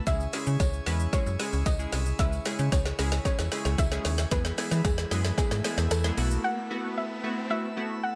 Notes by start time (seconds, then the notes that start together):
0.07 C#2 C#3 G#3 C#4 E4 G#4 E5, kick, snare, closed hi-hat, tambourine, riser, shaker
0.20 tambourine, shaker
0.33 G#3 C#4 E4 G#4, snare, open hi-hat, tambourine, shaker
0.46 C#3, shaker
0.60 C#2 C#5, kick, snare, closed hi-hat, tambourine, shaker
0.73 shaker
0.86 E2 G#3 C#4 E4 B4, snare, open hi-hat, tambourine, shaker
1.00 shaker
1.13 G#3 C#4 E4 G#4 C#5, kick, snare, closed hi-hat, tambourine, shaker
1.26 F#2, tambourine, shaker
1.39 G#3 C#4 E4 G#4, snare, open hi-hat, shaker
1.53 C#2, tambourine, shaker
1.66 C#2 D#5, kick, snare, closed hi-hat, tambourine, shaker
1.79 G#3 C#4 E4 G#4, shaker
1.92 C2, snare, open hi-hat, tambourine, shaker
2.06 tambourine, shaker
2.19 C#2 G#3 C#4 E4 B4 E5, kick, snare, closed hi-hat, tambourine, shaker
2.32 tambourine, shaker
2.45 G#3 C#4 E4 G#4, snare, open hi-hat, tambourine, shaker
2.59 C#3, tambourine, shaker
2.72 C#2 C#5, kick, snare, closed hi-hat, tambourine, shaker
2.86 snare, shaker
2.99 C#2 G#3 C#4 E4 G#4, snare, open hi-hat, tambourine, shaker
3.12 snare, shaker
3.25 G#3 C#4 E4 G#4 C#5, kick, snare, closed hi-hat, tambourine, shaker
3.38 E2, snare, tambourine, shaker
3.52 G#3 C#4 E4 G#4, snare, open hi-hat, shaker
3.65 C#2, snare, tambourine, shaker
3.78 C#2 E5, kick, snare, closed hi-hat, tambourine, shaker
3.91 G#3 C#4 E4 G#4, snare, shaker
4.05 D#2, snare, open hi-hat, tambourine, shaker
4.18 snare, tambourine, shaker
4.31 E2 E3 G#3 B3 E4 G#4 B4, kick, snare, closed hi-hat, tambourine, shaker
4.45 snare, tambourine, shaker
4.58 G#3 B3 E4 G#4, snare, open hi-hat, tambourine, shaker
4.71 E3, snare, shaker
4.85 E2 G#4, kick, snare, closed hi-hat, tambourine, shaker
4.98 snare, shaker
5.11 F#2 G#3 B3 E4 G#4, snare, open hi-hat, tambourine, shaker
5.24 snare, shaker
5.37 G#3 B3 E4 G#4, kick, snare, closed hi-hat, tambourine, shaker
5.51 G#2, snare, tambourine, shaker
5.64 G#3 B3 E4 G#4, snare, open hi-hat, shaker
5.78 E2, snare, shaker
5.91 E2 A4, snare, closed hi-hat, tambourine, shaker
6.04 G#3 B3 E4 G#4, snare, shaker
6.17 B1 A3 B3 E4 F#4, open hi-hat, tambourine, shaker
6.31 tambourine, shaker
6.44 F#5
6.70 A3 B3 E4 F#4
6.97 E5
7.23 A3 B3 E4 F#4
7.50 A3 B3 E4 F#4 E5
7.77 A3 B3 E4 F#4
8.03 F#5